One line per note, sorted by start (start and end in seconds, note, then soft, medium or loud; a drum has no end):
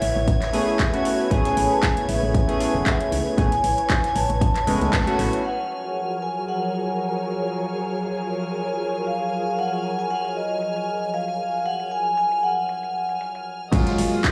0.00 0.11 A1 medium
0.00 5.41 E4 medium
0.00 5.41 B4 medium
0.00 5.41 C#5 medium
0.00 5.46 C#5 medium
0.00 0.78 E5 loud
0.00 5.46 G#6 medium
0.00 closed hi-hat medium
0.00 open hi-hat loud
0.16 0.60 A1 medium
0.28 kick loud
0.28 closed hi-hat medium
0.42 snare medium
0.42 clap soft
0.42 closed hi-hat soft
0.53 0.90 A3 medium
0.53 0.90 B3 medium
0.53 0.90 C#4 medium
0.53 0.90 G#4 loud
0.53 closed hi-hat medium
0.53 open hi-hat loud
0.67 snare soft
0.79 1.32 E5 medium
0.79 kick loud
0.79 snare loud
0.79 clap loud
0.79 closed hi-hat medium
0.93 1.28 A3 medium
0.93 1.28 B3 medium
0.93 1.28 C#4 medium
0.93 1.29 F#4 medium
0.93 closed hi-hat soft
0.93 closed hi-hat medium
1.05 closed hi-hat medium
1.05 open hi-hat loud
1.19 closed hi-hat soft
1.30 1.49 A1 loud
1.30 2.45 A3 medium
1.30 2.45 B3 medium
1.30 2.45 C#4 medium
1.30 2.46 G#4 loud
1.30 1.72 G#5 loud
1.30 kick loud
1.30 closed hi-hat medium
1.45 snare soft
1.45 closed hi-hat medium
1.57 1.66 A1 medium
1.57 closed hi-hat medium
1.57 open hi-hat loud
1.71 1.83 A5 loud
1.83 1.94 G#5 loud
1.83 kick loud
1.83 snare loud
1.83 clap loud
1.83 closed hi-hat medium
1.97 closed hi-hat soft
1.97 closed hi-hat medium
2.08 2.18 A1 loud
2.08 2.82 E5 medium
2.08 closed hi-hat medium
2.08 open hi-hat loud
2.23 2.67 A1 medium
2.34 kick loud
2.34 closed hi-hat medium
2.48 3.35 A3 medium
2.48 3.35 B3 medium
2.48 3.35 C#4 medium
2.48 3.36 G#4 medium
2.48 closed hi-hat soft
2.48 closed hi-hat medium
2.60 snare medium
2.60 closed hi-hat medium
2.60 open hi-hat medium
2.74 2.82 E1 medium
2.74 closed hi-hat soft
2.80 2.86 F#5 medium
2.86 3.39 E5 loud
2.86 kick loud
2.86 clap loud
2.86 closed hi-hat medium
3.00 closed hi-hat medium
3.12 3.21 C#2 medium
3.12 closed hi-hat medium
3.12 open hi-hat medium
3.26 closed hi-hat soft
3.37 3.56 A1 loud
3.37 3.49 A3 medium
3.37 3.49 B3 medium
3.37 3.49 C#4 medium
3.37 3.49 G#4 medium
3.37 4.18 G#5 loud
3.37 kick loud
3.37 closed hi-hat medium
3.52 snare soft
3.52 closed hi-hat medium
3.63 3.73 A1 medium
3.63 closed hi-hat medium
3.63 open hi-hat loud
3.78 closed hi-hat soft
3.89 kick loud
3.89 snare loud
3.89 clap loud
3.89 closed hi-hat medium
4.04 snare soft
4.04 closed hi-hat medium
4.15 4.25 A1 loud
4.15 5.15 A5 loud
4.15 closed hi-hat medium
4.15 open hi-hat loud
4.30 4.67 A1 medium
4.30 closed hi-hat soft
4.41 kick loud
4.41 closed hi-hat medium
4.55 clap soft
4.55 closed hi-hat soft
4.55 closed hi-hat medium
4.67 4.76 E1 loud
4.67 5.04 G#3 loud
4.67 5.04 A3 medium
4.67 5.04 B3 medium
4.67 5.04 C#4 medium
4.67 open hi-hat medium
4.67 open hi-hat loud
4.81 4.89 C#2 medium
4.81 snare soft
4.81 closed hi-hat soft
4.93 kick loud
4.93 snare loud
4.93 clap loud
4.93 closed hi-hat medium
5.07 5.42 A3 medium
5.07 5.42 B3 medium
5.07 5.42 C#4 medium
5.07 5.42 F#4 loud
5.07 closed hi-hat medium
5.19 5.28 A1 loud
5.19 closed hi-hat medium
5.19 open hi-hat loud
5.33 closed hi-hat soft
5.45 13.68 F3 medium
5.45 13.68 F#3 medium
5.45 13.68 G#4 medium
5.45 13.68 A#4 medium
5.45 13.68 C#5 medium
5.45 6.25 F#5 medium
5.45 13.74 G#5 medium
5.45 13.74 F6 medium
5.45 closed hi-hat medium
5.59 closed hi-hat medium
5.97 closed hi-hat medium
6.11 closed hi-hat soft
6.22 6.34 G#5 medium
6.48 7.22 F#5 medium
6.48 closed hi-hat medium
6.62 closed hi-hat medium
7.00 closed hi-hat medium
7.14 closed hi-hat medium
7.52 closed hi-hat medium
7.66 closed hi-hat medium
8.03 closed hi-hat medium
8.18 closed hi-hat medium
8.55 closed hi-hat medium
8.69 closed hi-hat soft
9.07 9.60 F5 medium
9.07 closed hi-hat medium
9.21 closed hi-hat soft
9.59 10.00 F#5 loud
9.59 closed hi-hat medium
9.73 closed hi-hat soft
9.99 10.11 G#5 loud
10.10 10.22 F#5 loud
10.10 closed hi-hat medium
10.25 closed hi-hat soft
10.36 11.16 D#5 medium
10.62 closed hi-hat medium
10.76 closed hi-hat soft
11.14 11.67 F5 medium
11.14 closed hi-hat medium
11.28 closed hi-hat soft
11.66 11.92 F#5 loud
11.66 closed hi-hat medium
11.80 closed hi-hat medium
11.91 12.16 G#5 medium
12.17 12.44 G#5 loud
12.17 closed hi-hat medium
12.32 closed hi-hat soft
12.43 13.17 F#5 medium
12.69 closed hi-hat medium
12.83 closed hi-hat soft
13.09 closed hi-hat soft
13.21 closed hi-hat medium
13.35 closed hi-hat soft
13.71 13.90 F#1 loud
13.71 14.32 F#3 medium
13.71 14.32 G#3 medium
13.71 14.32 A#3 medium
13.71 14.32 F4 loud
13.71 14.32 D#5 medium
13.71 14.32 D#6 medium
13.71 kick loud
13.71 closed hi-hat medium
13.71 crash loud
13.71 impact medium
13.87 snare soft
13.87 closed hi-hat medium
13.98 14.07 F#1 medium
13.98 closed hi-hat medium
13.98 open hi-hat loud
14.24 kick loud
14.24 snare loud
14.24 clap loud
14.24 closed hi-hat medium